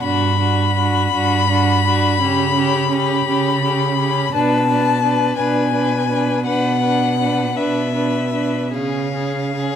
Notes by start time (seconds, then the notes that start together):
0.02 G2 D4 F#4 B5
0.39 D4 F#4
0.76 D4 F#4
1.13 G2 D4 F#4
1.49 D4 F#4
1.86 D4 F#4
2.20 C#3 C#4 G4
2.55 C#4 G4
2.91 C#4 G4
3.26 C#3 C#4 G4
3.64 C#4 G4
3.98 C#4 G4
4.34 B2 D4 B4 A5
4.69 D4 B4
5.03 D4 B4
5.37 B2 D4 B4 G#5
5.73 D4 B4
6.09 D4 B4
6.45 B2 D4 B4 F#5
6.82 D4 B4
7.20 D4 B4
7.55 B2 D4 B4 E5
7.94 D4 B4
8.33 D4 B4
8.73 C#3 C#4 G#4 F5
9.14 C#4 G#4
9.55 C#4 G#4